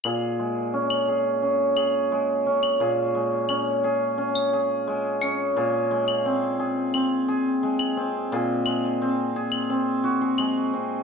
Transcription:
<<
  \new Staff \with { instrumentName = "Hammered dulcimer" } { \time 4/4 \key bes \minor \tempo 4 = 87 <bes, aes'>8 aes8 des'8 aes'8 des'8 aes'8 aes8 des'8 | <bes, aes'>8 aes8 des'8 aes'8 des'8 aes'8 aes8 des'8 | <bes, aes'>8 aes8 c'8 aes'8 c'8 aes'8 aes8 c'8 | <bes, aes'>8 aes8 c'8 aes'8 c'8 ges'16 aes'16 aes8 c'8 | }
  \new DrumStaff \with { instrumentName = "Drums" } \drummode { \time 4/4 cl4 r16 cl8. r8 cl8 r8. cl16 | r4 cl4 r16 cl8. r8 cl8 | r8. cl16 r4 cl4 r16 cl8. | r8 cl8 r8. cl16 r4 cl4 | }
>>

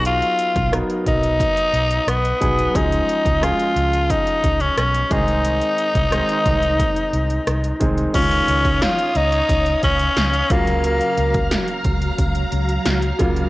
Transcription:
<<
  \new Staff \with { instrumentName = "String machine" } { \time 4/4 \key des \mixolydian \tempo 4 = 89 << { r1 | r1 | r1 | <des'' ees'''>2.~ <des'' ees'''>8 <ges bes''>8~ |
<ges bes''>1 | } \\ { r1 | r1 | r1 | f''1~ |
f''1 | } >> }
  \new Staff \with { instrumentName = "Tenor saxophone" } { \time 4/4 \key des \mixolydian f'4 r8 dis'4. b4 | ees'4 f'4 ees'8. des'16 des'8 ees'8~ | ees'2.~ ees'8 r8 | des'4 f'8 ees'4 des'4 bes8 |
bes4 r2. | }
  \new Staff \with { instrumentName = "Grand piano" } { \time 4/4 \key des \mixolydian <fis b dis' gis'>8 r8 <fis b dis' bes'>4. r4 <fis b dis' gis'>8 | <f aes des' aes'>4 <f aes des' aes'>4. r4 <ees aes c' aes'>8~ | <ees aes c' aes'>8 r8 <ees aes c' ees'>4. r4 <ees aes c' ees'>8 | <ees aes des' f'>4. r2 <des ges bes f'>8~ |
<des ges bes f'>4 r2 r8 <des ges bes f'>8 | }
  \new Staff \with { instrumentName = "Fingered electric bass" } { \clef bass \time 4/4 \key des \mixolydian b,,8 r16 b,,8 r16 b,,8. r16 b,,8 b,,8 b,,8 | des,8 r16 des,8 r16 des,8. r16 des,8 ces,8 c,8~ | c,8 r16 c,8 r16 c,8. r16 c,8 c,8 c,8 | des,8 des,8. r16 des,8 des,8 des,8 des,8 des,8~ |
des,8 des,8. r16 des,8 des,8 des,8 des,8 des,8 | }
  \new DrumStaff \with { instrumentName = "Drums" } \drummode { \time 4/4 hh16 hh16 hh16 <hh bd>16 <hh ss>16 hh16 <hh bd>16 hh16 <hh bd>16 hh16 hh16 hh16 <hh ss>16 hh16 <hh bd>16 hh16 | <hh bd>16 hh16 hh16 <hh bd>16 <hh ss>16 hh16 hh16 hh16 <hh bd>16 hh16 <hh bd>16 hh16 <hh ss>16 hh16 <hh bd>16 hh16 | hh16 hh16 hh16 <hh bd>16 <hh ss>16 hh16 <hh bd>16 hh16 <hh bd>16 hh16 hh16 hh16 <hh ss>16 hh16 <hh bd>16 hh16 | <cymc hh bd>16 hh16 hh16 <hh bd>16 <hh sn>16 hh16 hh16 hh16 <hh bd>16 hh16 <hh bd>16 hh16 <hh sn>16 hh16 <hh bd>16 hh16 |
hh16 hh16 hh16 <hh bd>16 <hh sn>16 hh16 <hh bd>16 hh16 <hh bd>16 hh16 hh16 hh16 <hh sn>16 hh16 <hh bd>16 hh16 | }
>>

